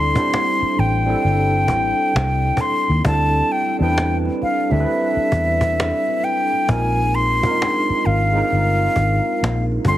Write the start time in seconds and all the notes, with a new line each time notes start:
Already playing: D2 G3 C4 D4 E4 A4 D5 C6
0.14 G3 C4 D4 E4 C5, cajon bass
0.34 cajon slap
0.61 muted fingered electric bass stroke, cajon slap
0.78 A1 G5, cajon slap
1.05 G3 C4 D4 E4, cajon slap
1.10 A4
1.23 G1, cajon slap
1.51 cajon slap
1.68 A1, cajon bass
1.98 cajon slap
2.15 C2, cajon slap
2.44 cajon slap
2.57 C6, cajon bass
2.88 D#2, cajon slap
2.90 cajon slap
3.04 D2 G3 C4 D4 E4 A5, cajon bass
3.08 A4
3.34 cajon slap
3.50 G5, cajon slap
3.79 E2 G3 C4 D4 E4 G5, cajon slap
3.83 B4
3.98 cajon slap
4.25 cajon slap
4.42 F5, muted fingered electric bass stroke, cajon slap
4.69 D2 G3 C4 D4 E4 E5, cajon slap
4.74 A4
4.80 B4
4.86 cajon slap
5.15 muted fingered electric bass stroke, cajon slap
5.32 E2, cajon bass
5.61 cajon bass
5.80 cajon slap
6.08 cajon slap
6.23 G5, cajon slap
6.52 cajon slap
6.54 cajon slap
6.68 A#1 G#3 C4 D#4 F4 A#4 G#5, cajon bass
6.98 cajon slap
7.14 C6, cajon slap
7.42 G#3 C4 D4 F4, cajon bass
7.46 A#4
7.51 D#4
7.62 cajon slap
7.89 muted fingered electric bass stroke, cajon slap
8.06 G#1 F5, cajon slap
8.33 G#3 C4 D#4 F4, cajon slap
8.37 A#4
8.51 G1, cajon slap
8.96 G#1, cajon bass
9.26 cajon slap
9.42 A#1, cajon slap
9.72 cajon slap
9.85 G1 G3 C4 D4 C6, cajon bass
9.89 F4 A4